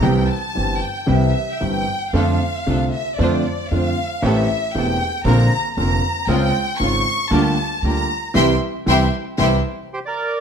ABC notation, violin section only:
X:1
M:4/4
L:1/8
Q:1/4=115
K:Cmix
V:1 name="Violin section"
g a2 g e2 g2 | f3 e d2 f2 | e2 g2 b2 b2 | g2 _d'2 a2 b2 |
[egc'] z [egc'] z [egc'] z3 |]